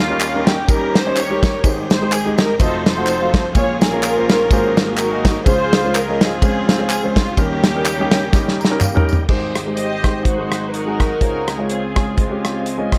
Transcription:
Already playing: D#2 D#3 G3 A#3 C#4 F4 G4
0.09 G3 C#4 D#4 A#4
0.21 clap, ride bell, tambourine
0.34 G3 C#4 D#4 A#4
0.47 G4, snare, ride bell, tambourine
0.68 G3 C#4 D#4 G4 A#4, kick, ride bell, tambourine
0.95 C5, snare, ride bell, tambourine
1.05 G3 C#4 D#4 C#5
1.16 G4 A#4 C#5, clap, ride bell, tambourine
1.29 G3 C#4 D#4 G4
1.43 kick, snare, ride bell, tambourine
1.63 G#1 G#2 G#3 C4 D#4 G4 C5, kick, ride bell, tambourine
1.90 C5, snare, ride bell, tambourine
2.01 G#3 D#4 G4 C5
2.12 G#4, clap, ride bell, tambourine
2.25 G#3 D#4 G4 D#5
2.38 A#4, snare, ride bell, tambourine
2.59 F1 F2 F3 A3 D#4 F4 F#4 A4 C5 D#5, kick, ride bell, tambourine
2.86 D#4 A4 C5, snare, ride bell, tambourine
2.97 A3 F4 F#4 F#5
3.07 clap, ride bell, tambourine
3.21 A3 F4 F#4 F5
3.34 kick, snare, ride bell, tambourine
3.55 A#1 A#2 G#3 A#3 C#4 F4 G#4 C#5, kick, ride bell, tambourine
3.81 C#4 F4 A#4, snare, ride bell, tambourine
3.93 A#3 F4 G#4 C#5
4.03 clap, ride bell, tambourine
4.16 A#3 F4 G#4 C5
4.29 snare, ride bell, tambourine
4.50 G#1 G#2 F#3 A#3 D#4 F#4 G#4 C5, kick, ride bell, tambourine
4.77 snare, ride bell, tambourine
4.88 A#3 F#4 G#4 A#4
4.98 D#4 F#4 A#4, clap, ride bell, tambourine
5.12 A#3 F#4 G#4 D#5
5.25 kick, snare, ride bell, tambourine
5.46 C#2 C#3 F3 G#3 C#4 F4 G#4 C5, kick, ride bell, tambourine
5.73 snare, ride bell, tambourine
5.84 G#3 C#4 F4 C5
5.94 A#4, clap, ride bell, tambourine
6.08 G#3 C#4 F4 D#5
6.21 C4 F4 G#4, snare, ride bell, tambourine
6.42 G#3 C#4 F4 C5, kick, ride bell, tambourine
6.69 snare, ride bell, tambourine
6.78 G#3 C#4 F4 C5
6.90 G#4, clap, ride bell, tambourine
7.03 G#3 C#4 F4 C5
7.16 F4, kick, snare, ride bell, tambourine
7.37 D#2 D#3 G3 A#3 C#4 D#4 G4 A#4, kick, ride bell, tambourine
7.63 snare, ride bell, tambourine
7.75 G3 C#4 D#4 A#4
7.85 clap, ride bell, tambourine
7.99 G3 C#4 D#4 G4
8.11 snare, ride bell, tambourine
8.33 G3 C#4 D#4 G4, kick, snare, tambourine
8.48 snare
8.60 A#5, tambourine
8.65 snare
8.70 G3 C#4 D#4 A#4
8.81 F5, clap, mid tom, tambourine
8.94 G3 C#4 D#4 A#4, floor tom
9.09 tambourine
9.13 floor tom
9.28 G#1 G#2 D#3 G3 G#3 C4 D#4 G4 C5, kick, crash
9.55 cross-stick, closed hi-hat
9.66 G#3 D#4 G4 C5
9.77 G4 C5 D#5, closed hi-hat
10.03 G#3 D#4 G4 C5, kick, cross-stick, closed hi-hat
10.24 G#1 G#2 F#3 D#4 F#4 C5, kick, closed hi-hat
10.38 G#3 D#4 F#4 C5
10.52 cross-stick, closed hi-hat
10.73 D#4 F#4 A#4, closed hi-hat
10.86 G#3 D#4 F#4 G#4
11.00 kick, cross-stick, closed hi-hat
11.20 C#2 C#3 G#3 C#4 F4 G#4 C5, kick, closed hi-hat
11.48 cross-stick, closed hi-hat
11.58 G#3 C#4 F4 C#5
11.69 C4 F4 G#4, closed hi-hat
11.95 G#3 C#4 F4 G#4, kick, cross-stick, closed hi-hat
12.18 G#3 C4 F4, kick, closed hi-hat
12.30 G#3 C#4 F4 G4
12.45 cross-stick, closed hi-hat
12.66 closed hi-hat
12.78 G#3 C#4 F4 D#5
12.92 kick, cross-stick, closed hi-hat

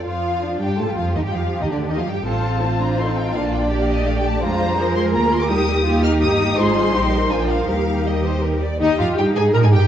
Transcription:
0.05 F2 F3 F4 F5
0.42 D4
0.60 G2 G3 G4 G5
0.78 A2 A3 F4 A4 A5
0.87 G2 G3 G4 G5
0.96 F2 F3 F4 F5
1.14 D#2 D#3 D#4 G4 D#5
1.24 G2 G3 G4 G5
1.33 F2 F3 F4 F5
1.60 D#2 D#3 D#4 D#5
1.70 D2 D3 D4 D5
1.88 D#2 D#3 D#4 D#5
1.97 F2 F3 F4 F5
2.07 G2 G3 G4 G5
2.25 A1 C4 F4 A4 C5 A5
2.62 A3 C4 F4 C5
2.80 D4 A#5
2.98 C4 D#4 A4 C6
3.07 A5
3.16 G5
3.33 A#1 A#3 D4 D5 F5
3.44 A5
3.52 G5
3.70 A#3 G4
3.80 F5
3.88 D#5
4.06 A3 F5
4.16 G5
4.26 A5
4.42 F2 G#3 D4 F4 C5 A#5
4.60 G3
4.77 F3 F4 G#4 A#4
4.95 G#3 C6
5.13 D2 A#3 F4 A#4 A#5
5.32 C6
5.41 D6
5.49 D#2 G3 D#4 G4 A#4 D#6
5.68 G3
5.85 A#3 D#4 F4 G4
6.03 D#4 F6
6.21 G1 G4 D#6
6.57 G#1 G#3 F4 G#4 C5 C6
6.76 G3
6.93 A#1 D#4 G4 C5
7.13 A#4
7.30 A#1 F3 D4 F4 G#5
7.40 G5
7.49 F5
7.68 D#2 G3 D#4 G4 A#4 F5
8.05 A#4 D#5
8.24 C5
8.42 A#4
8.61 D5
8.80 D#2 D#4 G4 D#5
8.98 F2 F4 F5
9.17 G2 D#4 G4 G5
9.35 G#2 G#4 G#5
9.54 A#2 A#4 A#5
9.63 G#2 G#4 G#5
9.72 G2 G4 G5

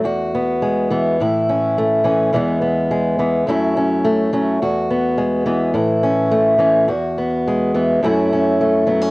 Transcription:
0.04 E2 F#4
0.35 B3
0.62 G#3
0.91 E3 B3
1.20 A2 E4
1.49 C#4
1.78 A3
2.04 E3 C#4
2.33 E2 E3 G#3 B3, muted steel-string acoustic guitar stroke
2.61 B3
2.91 G#3
3.19 E3 B3
3.47 F#2 F#3 A3 C#4 E4
3.77 C#4
4.05 A3
4.33 F#3 C#4
4.62 E2 F#4
4.90 B3
5.18 G#3
5.46 E3 B3
5.74 A2 E4
6.03 C#4
6.31 A3
6.58 E3 C#4
6.88 E2 F#4
7.18 B3
7.47 G#3
7.74 E3 B3
8.02 F#2 F#3 A3 C#4 E4
8.33 C#4
8.61 A3
8.87 F#3 B3
9.01 C#4

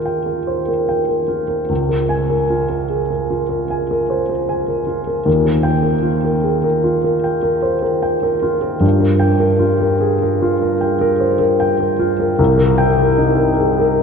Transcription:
Already playing: D#2 F4 G#4 A#4 G5
0.06 G5
0.26 A#4
0.47 C5
0.69 A#4
0.89 G5
1.09 A#4
1.28 F4
1.48 A#4
1.69 C#2
1.89 A#4
2.09 G#5
2.30 A#4
2.50 F4
2.70 A#4
2.90 G#4
3.11 A#4
3.30 F4
3.49 A#4
3.70 G#5
3.91 A#4
4.10 C5
4.29 A#4
4.49 G#5
4.68 A#4
4.87 F4
5.07 A#4
5.25 D#2
5.46 A#4
5.63 G5
5.83 A#4
6.03 F4
6.25 A#4
6.44 G#4
6.64 A#4
6.84 F4
7.04 A#4
7.24 G5
7.43 A#4
7.62 C5
7.83 A#4
8.03 G5
8.23 A#4
8.43 F4
8.62 A#4
8.80 G2
9.00 A#4
9.20 G5
9.40 A#4
9.59 F4
9.81 A#4
10.01 G#4
10.22 A#4
10.42 F4
10.62 A#4
10.81 G5
11.01 A#4
11.20 C5
11.39 A#4
11.60 G5
11.80 A#4
11.99 F4
12.20 A#4
12.39 C2
12.58 A#4
12.78 G5
12.98 A#4
13.18 D#4
13.37 A#4
13.59 G#4
13.80 A#4

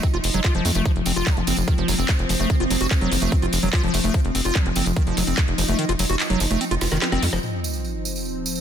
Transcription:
Already playing: F3 D#4
0.03 C4, kick, closed hi-hat
0.14 F1 F4, closed hi-hat
0.24 F1, open hi-hat, tambourine
0.34 F1 F#3, closed hi-hat, tambourine
0.44 F4, kick, clap, closed hi-hat, tambourine
0.55 F1 F3, closed hi-hat
0.65 F2 A3, open hi-hat, tambourine
0.75 F1 A3, closed hi-hat, tambourine
0.85 F3 C4, kick, closed hi-hat, tambourine
0.96 F1, closed hi-hat
1.06 F1 C4, open hi-hat, tambourine
1.16 F1 F4, closed hi-hat, tambourine
1.27 F3, kick, clap, closed hi-hat
1.37 F1 F4, closed hi-hat
1.47 F#1 C4, open hi-hat, tambourine
1.56 F1, closed hi-hat, tambourine
1.68 D#3, kick, closed hi-hat
1.78 F1 F3, closed hi-hat
1.88 F1 F#3, open hi-hat, tambourine
1.99 F1 C4, closed hi-hat, tambourine
2.09 F3, kick, clap, closed hi-hat, tambourine
2.19 F1, closed hi-hat
2.29 F1 F3, open hi-hat, tambourine
2.40 F1 A3, closed hi-hat, tambourine
2.50 D#3, kick, closed hi-hat
2.60 F1 F4, closed hi-hat
2.70 F1 F#3, open hi-hat, tambourine
2.80 F1 F#4, closed hi-hat, tambourine
2.91 kick, clap, closed hi-hat, tambourine
3.01 F1 F#3, closed hi-hat
3.12 F#1 F3, open hi-hat, tambourine
3.22 F1 A3, closed hi-hat, tambourine
3.32 C4, kick, closed hi-hat, tambourine
3.42 F1 F4, closed hi-hat
3.53 F1, open hi-hat, tambourine
3.63 F1 F#3, closed hi-hat, tambourine
3.73 F4, kick, clap, closed hi-hat
3.83 F1 F3, closed hi-hat
3.94 F1 A3, open hi-hat, tambourine
4.04 F1 A3, closed hi-hat, tambourine
4.14 F3 D#4, kick, closed hi-hat, tambourine
4.25 F1, closed hi-hat
4.35 F1 C4, open hi-hat, tambourine
4.45 F1 F4, closed hi-hat, tambourine
4.55 F3, kick, clap, closed hi-hat, tambourine
4.66 F1 F4, closed hi-hat
4.76 F#1 C4, open hi-hat, tambourine
4.86 F1, closed hi-hat, tambourine
4.96 D#3, kick, closed hi-hat, tambourine
5.07 F1 F3, closed hi-hat
5.17 F1 F#3, open hi-hat, tambourine
5.27 F1 C4, closed hi-hat, tambourine
5.38 F3, kick, clap, closed hi-hat
5.48 F1, closed hi-hat
5.58 F1 F3, open hi-hat, tambourine
5.68 F1 A3, closed hi-hat, tambourine
5.79 D#3, closed hi-hat, tambourine
5.89 F1 F4, closed hi-hat
5.99 F1 F#3, open hi-hat, tambourine
6.09 F1 F#4, closed hi-hat, tambourine
6.20 clap, closed hi-hat, tambourine
6.30 F1 F#3, closed hi-hat
6.40 F#1 F3, open hi-hat, tambourine
6.50 F1 A3, closed hi-hat, tambourine
6.61 C4, closed hi-hat, tambourine
6.71 F1 F4, closed hi-hat
6.81 F1 F4, snare, open hi-hat, tambourine
6.91 F1 D#3, snare, closed hi-hat, tambourine
7.02 C4, snare, clap, closed hi-hat, tambourine
7.12 F1 C4, snare, closed hi-hat
7.23 F2 F3, open hi-hat, tambourine
7.33 F1 F3, snare, tambourine
7.43 F3 C4, tambourine, sub drop
7.64 tambourine
7.73 tambourine
7.85 tambourine
8.05 tambourine
8.16 tambourine
8.25 tambourine
8.46 tambourine
8.55 tambourine

